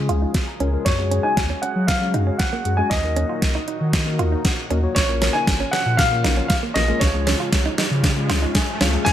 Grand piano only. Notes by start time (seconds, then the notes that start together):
0.85 C#5
1.23 G#5
1.62 F#5
1.87 F5
2.38 F#5
2.77 G#5
2.90 D#5
4.95 C#5
5.33 G#5
5.71 F#5
5.97 F5
6.48 F5
6.74 D#5
7.00 C#5
9.05 G#5